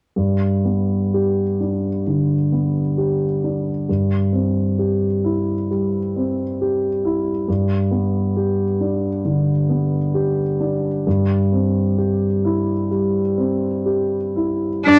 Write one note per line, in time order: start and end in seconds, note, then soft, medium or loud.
0.16 2.02 G2 soft
0.65 1.41 B3 soft
1.14 1.88 G4 soft
1.60 2.34 D4 soft
2.07 2.80 D3 soft
2.52 3.25 B3 soft
2.98 3.70 G4 soft
3.44 3.88 D4 soft
3.89 5.67 G2 soft
4.33 5.07 C4 soft
4.79 5.52 G4 soft
5.24 5.97 E4 soft
5.71 6.43 G3 soft
6.16 6.87 C4 soft
6.61 7.31 G4 soft
7.05 7.48 E4 soft
7.48 9.21 G2 soft
7.91 8.62 B3 soft
8.37 9.07 G4 soft
8.80 9.51 D4 soft
9.25 9.96 D3 soft
9.69 10.42 B3 soft
10.14 10.88 G4 soft
10.60 11.06 D4 soft
11.07 12.87 G2 soft
11.52 12.26 C4 soft
11.98 12.72 G4 soft
12.45 13.19 E4 soft
12.91 13.67 G3 soft
13.38 14.16 C4 soft
13.86 14.67 G4 soft
14.36 14.86 E4 soft
14.86 14.99 G2 soft
14.86 14.99 D4 soft